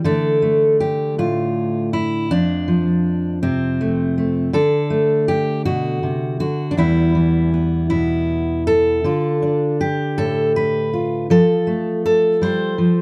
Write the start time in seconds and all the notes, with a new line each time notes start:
0.04 D3 A3 D4 A4
0.42 A3
0.80 G4
1.18 A2 F4
1.93 E4
2.31 F2 D4
2.68 F3
3.43 C3 C4
3.81 A3
4.18 A3
4.53 D3 A4
4.90 A3
5.28 G4
5.65 B2 F#4
6.03 C3
6.40 D3 F#4
6.71 D4
6.77 E2 E3 G3 B3 E4
7.15 E3
7.54 B3
7.90 B2 E4
8.67 A4
9.04 D3 D4 F4
9.42 D4
9.81 G4
10.18 A2 A4
10.56 B4
10.93 F4
11.30 F3 A4
11.67 A3
12.06 A4
12.42 G3 C5
12.78 F3